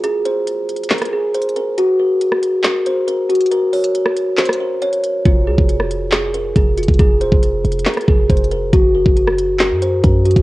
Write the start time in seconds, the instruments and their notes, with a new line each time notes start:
0.04 kalimba G#4, closed hi-hat
0.25 kalimba C5, closed hi-hat
0.47 closed hi-hat
0.69 closed hi-hat
0.76 closed hi-hat
0.83 closed hi-hat
0.90 kalimba A#4, snare, clap, closed hi-hat
0.98 cross-stick, closed hi-hat
1.01 closed hi-hat
1.05 closed hi-hat
1.13 kalimba G#4
1.34 kalimba C5, closed hi-hat
1.41 closed hi-hat
1.49 closed hi-hat
1.56 kalimba A#4, closed hi-hat
1.78 kalimba F#4, closed hi-hat
1.99 kalimba A#4
2.21 closed hi-hat
2.32 cross-stick
2.43 closed hi-hat
2.64 kalimba A#4, snare, clap, closed hi-hat
2.86 kalimba C5, closed hi-hat
3.08 kalimba A#4, closed hi-hat
3.29 kalimba F#4, closed hi-hat
3.35 closed hi-hat
3.41 closed hi-hat
3.46 closed hi-hat
3.51 kalimba A#4, closed hi-hat
3.73 kalimba C#5, closed hi-hat, open hi-hat
3.84 closed hi-hat
3.95 closed hi-hat
4.06 cross-stick
4.17 closed hi-hat
4.37 kalimba C5, snare, clap, closed hi-hat
4.46 cross-stick, closed hi-hat
4.53 closed hi-hat
4.60 kalimba A#4
4.82 kalimba C#5, closed hi-hat
4.93 closed hi-hat
5.04 closed hi-hat
5.25 808-style bass F1, kalimba F4, kick, closed hi-hat
5.47 808-style bass C2, kalimba G#4
5.58 808-style bass F1, kick
5.69 closed hi-hat
5.80 cross-stick
5.91 closed hi-hat
6.11 kalimba G#4, snare, clap, closed hi-hat
6.34 kalimba A#4, closed hi-hat
6.56 808-style bass F1, kalimba G#4, kick, closed hi-hat
6.77 kalimba F4, closed hi-hat
6.83 closed hi-hat
6.88 808-style bass F1, kick, closed hi-hat
6.94 closed hi-hat
6.99 808-style bass F1, kalimba G#4, kick, closed hi-hat
7.21 808-style bass D#1, kalimba C5, closed hi-hat
7.32 808-style bass F1, kick
7.43 closed hi-hat
7.65 808-style bass F1, closed hi-hat
7.72 closed hi-hat
7.79 closed hi-hat
7.85 kalimba A#4, snare, clap, closed hi-hat
7.94 cross-stick, closed hi-hat
7.97 closed hi-hat
8.01 closed hi-hat
8.08 808-style bass F1, kalimba G#4, kick
8.30 808-style bass F1, kalimba C5, kick, closed hi-hat
8.37 closed hi-hat
8.44 closed hi-hat
8.51 kalimba A#4, closed hi-hat
8.73 808-style bass F#1, kalimba F#4, kick, closed hi-hat
8.95 kalimba A#4
9.06 808-style bass F#1, kick
9.17 closed hi-hat
9.28 cross-stick
9.38 closed hi-hat
9.59 kalimba A#4, snare, clap, closed hi-hat
9.71 808-style bass F#2
9.82 kalimba C5, closed hi-hat
10.04 808-style bass F#2, kalimba A#4, kick, closed hi-hat
10.25 kalimba F#4, closed hi-hat
10.31 closed hi-hat
10.36 808-style bass F#1, kick, closed hi-hat